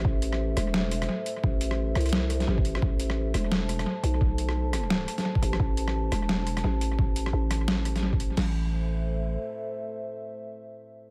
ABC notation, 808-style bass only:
X:1
M:4/4
L:1/8
Q:"Swing 16ths" 1/4=173
K:Am
V:1 name="808-style bass" clef=bass
A,,,3 E,,,3 z2 | A,,,3 C,,3 A,,,2 | A,,,3 E,,,3 z B,,,- | B,,,4- B,,, z2 A,,, |
A,,,3 E,,,3 A,,,2- | A,,,2 A,,,6 | A,,,6 z2 | z8 |]